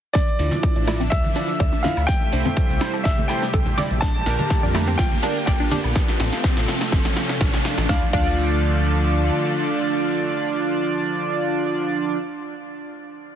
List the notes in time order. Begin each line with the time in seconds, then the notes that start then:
0.13 D3 F3 A3 D4 D5 E5, kick, snare, closed hi-hat, riser, cabasa
0.28 closed hi-hat, cabasa
0.39 D2 E4 F4 D5, open hi-hat, cabasa
0.51 snare, closed hi-hat, high conga, low conga, cabasa
0.63 kick, closed hi-hat, cabasa
0.76 A1 D4, closed hi-hat, cabasa
0.87 A3 E4 F4 D5, snare, open hi-hat, cabasa, high woodblock
1.00 C4, closed hi-hat, cabasa
1.10 D2 F4 E5, kick, snare, closed hi-hat, cabasa
1.24 closed hi-hat, high conga, cabasa
1.35 D4 E4 F4 D5, open hi-hat, cabasa
1.48 closed hi-hat, cabasa
1.60 D2 D5, kick, closed hi-hat, cabasa
1.73 D4, closed hi-hat, cabasa
1.83 D4 E4 F4 E5 F5, snare, open hi-hat, high conga, cabasa
1.97 D2, closed hi-hat, cabasa, high woodblock
2.07 C3 G3 G4 G5, kick, snare, closed hi-hat, cabasa
2.21 closed hi-hat, cabasa
2.33 C2 D4 E4 A4 C5, open hi-hat, cabasa
2.45 C4, closed hi-hat, high conga, low conga, cabasa
2.57 kick, closed hi-hat, cabasa
2.70 C2, closed hi-hat, cabasa
2.80 D4 E4 A4 C5, snare, open hi-hat, cabasa, high woodblock
2.94 A4, closed hi-hat, cabasa
3.04 A1 D4 E5, kick, snare, closed hi-hat, cabasa
3.17 A3, closed hi-hat, high conga, cabasa
3.28 E4 A4 C5 G5, open hi-hat, cabasa, high woodblock
3.42 snare, closed hi-hat, cabasa
3.54 C2 A4, kick, closed hi-hat, cabasa
3.66 closed hi-hat, low conga, cabasa
3.78 E4 A4 D5, snare, open hi-hat, high conga, cabasa
3.91 A#1, closed hi-hat, cabasa
4.01 D3 G3 A#3 D4 F4 A5, kick, snare, closed hi-hat, cabasa
4.15 closed hi-hat, cabasa
4.26 A#1 D4 G4 A#4, snare, open hi-hat, cabasa
4.39 closed hi-hat, high conga, low conga, cabasa
4.50 kick, snare, closed hi-hat, cabasa
4.63 F2 D4, closed hi-hat, cabasa
4.75 A3 D4 G4 A#4, snare, open hi-hat, cabasa, high woodblock
4.87 C4, closed hi-hat, cabasa
4.98 A#1 F4 G5, kick, snare, closed hi-hat, cabasa
5.11 closed hi-hat, high conga, cabasa
5.22 D4 G4 A#4, snare, open hi-hat, cabasa
5.36 closed hi-hat, cabasa
5.46 A#1 D5 G5, kick, snare, closed hi-hat, cabasa
5.60 D4, closed hi-hat, cabasa
5.71 D4 G4 C5, snare, open hi-hat, high conga, cabasa
5.84 A#1, closed hi-hat, cabasa, high woodblock
5.96 C3 F3 A3 A4, kick, snare, closed hi-hat
6.08 snare, closed hi-hat
6.20 A1, snare, open hi-hat
6.33 snare, closed hi-hat
6.44 kick, snare, closed hi-hat
6.57 A1, snare, closed hi-hat
6.68 snare, open hi-hat
6.81 snare, closed hi-hat
6.92 G1, kick, snare, closed hi-hat
7.05 snare, closed hi-hat
7.17 snare, open hi-hat
7.29 snare, closed hi-hat
7.41 A1, kick, snare, closed hi-hat
7.54 snare, closed hi-hat
7.65 snare, open hi-hat
7.78 A1, snare, closed hi-hat
7.89 D2 D3 F3 A3 D4 E4 F4 A4 D5 F5, kick, snare
8.13 D2 D4 F4 D5 F5, kick, crash